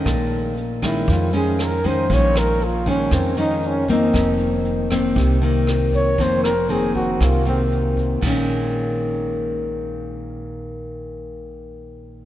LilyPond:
<<
  \new Staff \with { instrumentName = "Flugelhorn" } { \time 4/4 \key bes \minor \tempo 4 = 118 r4. e'8 f'8 aes'8 bes'8 c''8 | des''8 bes'8 f'8 des'8 c'8 ees'8 des'8 ees'8~ | ees'8 r2. des''8 | c''8 bes'8 aes'8 ges'8 f'8 c'8 r4 |
r1 | r1 | }
  \new Staff \with { instrumentName = "Nylon-string guitar" } { \clef bass \time 4/4 \key bes \minor << { <ees gis cis'>4 r8 <ees aes des'>4 <ees aes des'>4 <ees aes des'>8 | <ees aes des'>4 r8 <ees aes des'>4 <ees aes des'>4 <ees bes c'>8~ | <ees bes c'>4. <ees bes c'>4 <ees bes c'>4. | <ees bes c'>8 r8 <ees bes c'>4. <ees bes c'>4. |
<bes, ees aes des'>1~ | <bes, ees aes des'>1 | } \\ { bes,2 f,2 | bes,2 f,2 | f,2 c2 | f,2 c2 |
r1 | r1 | } >> }
  \new Staff \with { instrumentName = "Upright bass" } { \clef bass \time 4/4 \key bes \minor bes,,2 f,2 | bes,,2 f,2 | f,,2 c,2 | f,,2 c,2 |
bes,,1~ | bes,,1 | }
  \new DrumStaff \with { instrumentName = "Drums" } \drummode { \time 4/4 <hh bd ss>8 hh8 hh8 <hh bd ss>8 <hh bd>8 hh8 <hh ss>8 <hh bd>8 | <hh bd>8 <hh ss>8 hh8 <hh bd>8 <hh bd ss>8 hh8 hh8 <hh bd>8 | <hh bd ss>8 hh8 hh8 <hh bd ss>8 <hh bd>8 hh8 <hh ss>8 <hh bd>8 | <hh bd>8 <hh ss>8 hh8 <hh bd>8 <hh bd ss>8 hh8 hh8 <hh bd>8 |
<cymc bd>4 r4 r4 r4 | r4 r4 r4 r4 | }
>>